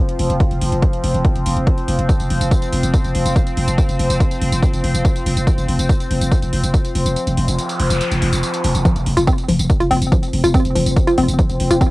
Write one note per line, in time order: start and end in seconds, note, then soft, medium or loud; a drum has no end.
0.00 8.84 F3 medium
0.00 8.84 C4 medium
0.09 closed hi-hat medium
0.19 0.29 F1 loud
0.19 open hi-hat loud
0.30 0.40 F1 medium
0.30 closed hi-hat medium
0.40 kick loud
0.40 closed hi-hat medium
0.51 0.61 F1 medium
0.51 closed hi-hat medium
0.61 0.72 F1 loud
0.61 open hi-hat loud
0.72 0.82 F1 medium
0.72 closed hi-hat medium
0.82 kick loud
0.82 closed hi-hat medium
0.93 closed hi-hat medium
1.04 1.14 F1 loud
1.04 open hi-hat loud
1.14 1.24 F1 medium
1.14 closed hi-hat medium
1.25 kick loud
1.25 closed hi-hat medium
1.35 1.45 F1 medium
1.35 closed hi-hat medium
1.46 1.56 F1 loud
1.46 open hi-hat loud
1.57 1.67 F1 medium
1.57 closed hi-hat medium
1.67 kick loud
1.67 closed hi-hat medium
1.78 closed hi-hat medium
1.88 1.98 F1 loud
1.88 open hi-hat loud
1.99 2.09 F1 medium
1.99 closed hi-hat medium
2.09 kick loud
2.09 closed hi-hat medium
2.09 tambourine medium
2.20 2.30 F1 medium
2.20 closed hi-hat medium
2.20 tambourine soft
2.30 2.40 F1 loud
2.30 open hi-hat loud
2.41 2.51 F1 medium
2.41 closed hi-hat medium
2.41 tambourine medium
2.51 kick loud
2.51 closed hi-hat medium
2.51 tambourine medium
2.62 closed hi-hat medium
2.62 tambourine soft
2.73 2.83 F1 loud
2.73 open hi-hat loud
2.83 2.93 F1 medium
2.83 closed hi-hat medium
2.83 tambourine medium
2.94 kick loud
2.94 closed hi-hat medium
2.94 tambourine medium
3.04 3.14 F1 medium
3.04 closed hi-hat medium
3.04 tambourine soft
3.15 3.25 F1 loud
3.15 open hi-hat loud
3.25 3.36 F1 medium
3.25 closed hi-hat medium
3.25 tambourine medium
3.36 kick loud
3.36 closed hi-hat medium
3.36 tambourine medium
3.47 closed hi-hat medium
3.47 tambourine soft
3.57 3.67 F1 loud
3.57 open hi-hat loud
3.68 3.78 F1 medium
3.68 closed hi-hat medium
3.68 tambourine medium
3.78 kick loud
3.78 closed hi-hat medium
3.78 tambourine medium
3.89 3.99 F1 medium
3.89 closed hi-hat medium
3.89 tambourine soft
3.99 4.09 F1 loud
3.99 open hi-hat loud
4.10 4.20 F1 medium
4.10 closed hi-hat medium
4.10 tambourine medium
4.20 kick loud
4.20 closed hi-hat medium
4.20 tambourine medium
4.31 closed hi-hat medium
4.31 tambourine soft
4.41 4.51 F1 loud
4.41 open hi-hat loud
4.52 4.62 F1 medium
4.52 closed hi-hat medium
4.52 tambourine medium
4.63 kick loud
4.63 closed hi-hat medium
4.63 tambourine medium
4.73 4.83 F1 medium
4.73 closed hi-hat medium
4.73 tambourine soft
4.83 4.94 F1 loud
4.83 open hi-hat loud
4.94 5.05 F1 medium
4.94 closed hi-hat medium
4.94 tambourine medium
5.05 kick loud
5.05 closed hi-hat medium
5.05 tambourine medium
5.16 closed hi-hat medium
5.16 tambourine soft
5.26 5.36 F1 loud
5.26 open hi-hat loud
5.37 5.47 F1 medium
5.37 closed hi-hat medium
5.37 tambourine medium
5.47 kick loud
5.47 closed hi-hat medium
5.47 tambourine medium
5.58 5.67 F1 medium
5.58 closed hi-hat medium
5.58 tambourine soft
5.68 5.78 F1 loud
5.68 open hi-hat loud
5.79 5.89 F1 medium
5.79 closed hi-hat medium
5.79 tambourine medium
5.89 kick loud
5.89 closed hi-hat medium
5.89 tambourine medium
6.00 closed hi-hat medium
6.00 tambourine soft
6.10 6.21 F1 loud
6.10 open hi-hat loud
6.21 6.32 F1 medium
6.21 closed hi-hat medium
6.21 tambourine medium
6.32 kick loud
6.32 closed hi-hat medium
6.32 tambourine medium
6.42 6.52 F1 medium
6.42 closed hi-hat medium
6.42 tambourine soft
6.53 6.63 F1 loud
6.53 open hi-hat loud
6.64 6.74 F1 medium
6.64 closed hi-hat medium
6.64 tambourine medium
6.74 kick loud
6.74 closed hi-hat medium
6.74 tambourine medium
6.85 closed hi-hat medium
6.85 tambourine soft
6.95 7.05 F1 loud
6.95 open hi-hat loud
7.06 7.16 F1 medium
7.06 closed hi-hat medium
7.06 tambourine medium
7.16 closed hi-hat medium
7.16 tambourine soft
7.16 noise sweep medium
7.27 7.37 F1 medium
7.27 closed hi-hat medium
7.27 tambourine soft
7.37 7.48 F1 loud
7.37 open hi-hat loud
7.48 7.58 F1 medium
7.48 closed hi-hat medium
7.48 tambourine medium
7.59 closed hi-hat medium
7.59 tambourine medium
7.69 closed hi-hat medium
7.69 tambourine soft
7.80 7.90 F1 loud
7.80 open hi-hat loud
7.90 8.01 F1 medium
7.90 closed hi-hat medium
7.90 tambourine medium
8.01 closed hi-hat medium
8.01 tambourine medium
8.11 8.21 F1 medium
8.11 closed hi-hat medium
8.11 tambourine soft
8.22 8.32 F1 loud
8.22 open hi-hat loud
8.33 8.43 F1 medium
8.33 closed hi-hat medium
8.33 tambourine medium
8.43 closed hi-hat medium
8.43 tambourine medium
8.54 closed hi-hat medium
8.54 tambourine soft
8.64 8.74 F1 loud
8.64 open hi-hat loud
8.75 8.85 F1 medium
8.75 closed hi-hat medium
8.75 tambourine medium
8.85 11.91 F3 medium
8.85 8.95 F3 medium
8.85 11.91 C4 medium
8.85 kick loud
8.85 closed hi-hat medium
8.85 tambourine soft
8.96 9.06 F1 medium
8.96 closed hi-hat medium
8.96 tambourine soft
9.06 9.17 F1 loud
9.06 open hi-hat loud
9.17 9.27 F1 medium
9.17 9.24 F4 loud
9.17 closed hi-hat medium
9.17 tambourine medium
9.27 9.34 C4 loud
9.27 kick loud
9.27 closed hi-hat medium
9.27 tambourine soft
9.38 closed hi-hat medium
9.38 tambourine soft
9.49 9.59 F1 loud
9.49 9.59 F3 medium
9.49 open hi-hat loud
9.59 9.70 F1 medium
9.59 closed hi-hat medium
9.59 tambourine medium
9.70 kick loud
9.70 closed hi-hat medium
9.70 tambourine soft
9.80 9.90 F1 medium
9.80 9.87 F4 loud
9.80 closed hi-hat medium
9.80 tambourine soft
9.91 10.01 F1 loud
9.91 9.98 C4 loud
9.91 open hi-hat loud
10.02 10.12 F1 medium
10.02 closed hi-hat medium
10.02 tambourine medium
10.12 10.22 F3 medium
10.12 kick loud
10.12 closed hi-hat medium
10.12 tambourine soft
10.23 closed hi-hat medium
10.23 tambourine soft
10.33 10.43 F1 loud
10.33 open hi-hat loud
10.44 10.54 F1 medium
10.44 10.51 F4 loud
10.44 closed hi-hat medium
10.44 tambourine medium
10.54 10.61 C4 loud
10.54 kick loud
10.54 closed hi-hat medium
10.54 tambourine soft
10.65 10.75 F1 medium
10.65 closed hi-hat medium
10.65 tambourine soft
10.75 10.86 F1 loud
10.75 10.86 F3 medium
10.75 open hi-hat loud
10.86 10.96 F1 medium
10.86 closed hi-hat medium
10.86 tambourine medium
10.96 kick loud
10.96 closed hi-hat medium
10.96 tambourine soft
11.07 11.14 F4 loud
11.07 closed hi-hat medium
11.07 tambourine soft
11.18 11.28 F1 loud
11.18 11.25 C4 loud
11.18 open hi-hat loud
11.28 11.39 F1 medium
11.28 closed hi-hat medium
11.28 tambourine medium
11.39 11.49 F3 medium
11.39 kick loud
11.39 closed hi-hat medium
11.39 tambourine soft
11.50 11.59 F1 medium
11.50 closed hi-hat medium
11.50 tambourine soft
11.60 11.70 F1 loud
11.60 open hi-hat loud
11.71 11.81 F1 medium
11.71 11.77 F4 loud
11.71 closed hi-hat medium
11.71 tambourine medium
11.81 11.88 C4 loud
11.81 kick loud
11.81 closed hi-hat medium
11.81 tambourine soft